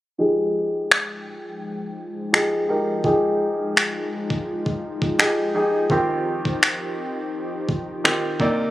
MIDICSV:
0, 0, Header, 1, 4, 480
1, 0, Start_track
1, 0, Key_signature, -4, "minor"
1, 0, Tempo, 714286
1, 123, Time_signature, 4, 2, 24, 8
1, 5850, End_track
2, 0, Start_track
2, 0, Title_t, "Grand piano"
2, 0, Program_c, 0, 0
2, 124, Note_on_c, 0, 53, 74
2, 128, Note_on_c, 0, 63, 69
2, 131, Note_on_c, 0, 67, 70
2, 135, Note_on_c, 0, 68, 87
2, 241, Control_c, 0, 64, 127
2, 816, Note_off_c, 0, 53, 0
2, 818, Note_off_c, 0, 63, 0
2, 820, Note_off_c, 0, 67, 0
2, 822, Note_off_c, 0, 68, 0
2, 1563, Note_on_c, 0, 53, 74
2, 1567, Note_on_c, 0, 63, 69
2, 1571, Note_on_c, 0, 67, 68
2, 1574, Note_on_c, 0, 68, 80
2, 1741, Note_off_c, 0, 53, 0
2, 1743, Note_off_c, 0, 63, 0
2, 1745, Note_off_c, 0, 67, 0
2, 1746, Note_off_c, 0, 68, 0
2, 1803, Note_on_c, 0, 53, 75
2, 1807, Note_on_c, 0, 63, 65
2, 1810, Note_on_c, 0, 67, 70
2, 1814, Note_on_c, 0, 70, 80
2, 1981, Note_off_c, 0, 53, 0
2, 1983, Note_off_c, 0, 63, 0
2, 1985, Note_off_c, 0, 67, 0
2, 1987, Note_off_c, 0, 70, 0
2, 2042, Note_on_c, 0, 53, 77
2, 2046, Note_on_c, 0, 63, 68
2, 2050, Note_on_c, 0, 67, 68
2, 2054, Note_on_c, 0, 68, 83
2, 2736, Note_off_c, 0, 53, 0
2, 2737, Note_off_c, 0, 63, 0
2, 2739, Note_off_c, 0, 67, 0
2, 2741, Note_off_c, 0, 68, 0
2, 3485, Note_on_c, 0, 53, 74
2, 3488, Note_on_c, 0, 63, 69
2, 3492, Note_on_c, 0, 67, 64
2, 3496, Note_on_c, 0, 68, 82
2, 3662, Note_off_c, 0, 53, 0
2, 3664, Note_off_c, 0, 63, 0
2, 3665, Note_off_c, 0, 67, 0
2, 3668, Note_off_c, 0, 68, 0
2, 3724, Note_on_c, 0, 53, 75
2, 3727, Note_on_c, 0, 63, 71
2, 3731, Note_on_c, 0, 67, 67
2, 3735, Note_on_c, 0, 68, 82
2, 3901, Note_off_c, 0, 53, 0
2, 3903, Note_off_c, 0, 63, 0
2, 3905, Note_off_c, 0, 67, 0
2, 3907, Note_off_c, 0, 68, 0
2, 3965, Note_on_c, 0, 51, 76
2, 3969, Note_on_c, 0, 60, 71
2, 3972, Control_c, 0, 64, 0
2, 3973, Note_on_c, 0, 65, 72
2, 3976, Note_on_c, 0, 67, 82
2, 4100, Control_c, 0, 64, 127
2, 4657, Note_off_c, 0, 51, 0
2, 4659, Note_off_c, 0, 60, 0
2, 4661, Note_off_c, 0, 65, 0
2, 4662, Note_off_c, 0, 67, 0
2, 5404, Note_on_c, 0, 51, 76
2, 5408, Note_on_c, 0, 60, 74
2, 5411, Note_on_c, 0, 65, 73
2, 5414, Note_on_c, 0, 67, 83
2, 5581, Note_off_c, 0, 51, 0
2, 5583, Note_off_c, 0, 60, 0
2, 5585, Note_off_c, 0, 65, 0
2, 5587, Note_off_c, 0, 67, 0
2, 5644, Note_on_c, 0, 48, 84
2, 5648, Note_on_c, 0, 58, 83
2, 5651, Note_on_c, 0, 63, 82
2, 5652, Control_c, 0, 64, 0
2, 5655, Note_on_c, 0, 74, 96
2, 5743, Control_c, 0, 64, 127
2, 5839, Note_off_c, 0, 48, 0
2, 5841, Note_off_c, 0, 58, 0
2, 5843, Note_off_c, 0, 63, 0
2, 5845, Note_off_c, 0, 74, 0
2, 5850, End_track
3, 0, Start_track
3, 0, Title_t, "Analog synth pad"
3, 0, Program_c, 1, 89
3, 121, Note_on_c, 1, 53, 80
3, 121, Note_on_c, 1, 63, 69
3, 122, Note_on_c, 1, 56, 69
3, 123, Note_on_c, 1, 79, 89
3, 2024, Note_off_c, 1, 79, 0
3, 2043, Note_on_c, 1, 65, 84
3, 3935, Note_off_c, 1, 53, 0
3, 3936, Note_off_c, 1, 56, 0
3, 3944, Note_off_c, 1, 65, 0
3, 3963, Note_on_c, 1, 60, 68
3, 3964, Note_on_c, 1, 53, 78
3, 3964, Note_on_c, 1, 67, 88
3, 5615, Note_off_c, 1, 63, 0
3, 5627, Note_off_c, 1, 53, 0
3, 5627, Note_off_c, 1, 67, 0
3, 5643, Note_on_c, 1, 51, 76
3, 5643, Note_on_c, 1, 70, 81
3, 5644, Note_on_c, 1, 62, 68
3, 5850, Note_off_c, 1, 51, 0
3, 5850, Note_off_c, 1, 60, 0
3, 5850, Note_off_c, 1, 62, 0
3, 5850, Note_off_c, 1, 70, 0
3, 5850, End_track
4, 0, Start_track
4, 0, Title_t, "Drums"
4, 615, Note_on_c, 9, 26, 102
4, 682, Note_off_c, 9, 26, 0
4, 1572, Note_on_c, 9, 26, 104
4, 1639, Note_off_c, 9, 26, 0
4, 2043, Note_on_c, 9, 36, 99
4, 2111, Note_off_c, 9, 36, 0
4, 2535, Note_on_c, 9, 26, 101
4, 2602, Note_off_c, 9, 26, 0
4, 2892, Note_on_c, 9, 36, 92
4, 2959, Note_off_c, 9, 36, 0
4, 3132, Note_on_c, 9, 36, 79
4, 3200, Note_off_c, 9, 36, 0
4, 3372, Note_on_c, 9, 36, 81
4, 3439, Note_off_c, 9, 36, 0
4, 3491, Note_on_c, 9, 26, 102
4, 3558, Note_off_c, 9, 26, 0
4, 3963, Note_on_c, 9, 36, 109
4, 4031, Note_off_c, 9, 36, 0
4, 4336, Note_on_c, 9, 36, 80
4, 4404, Note_off_c, 9, 36, 0
4, 4454, Note_on_c, 9, 26, 107
4, 4521, Note_off_c, 9, 26, 0
4, 5165, Note_on_c, 9, 36, 90
4, 5232, Note_off_c, 9, 36, 0
4, 5411, Note_on_c, 9, 26, 105
4, 5478, Note_off_c, 9, 26, 0
4, 5643, Note_on_c, 9, 36, 100
4, 5710, Note_off_c, 9, 36, 0
4, 5850, End_track
0, 0, End_of_file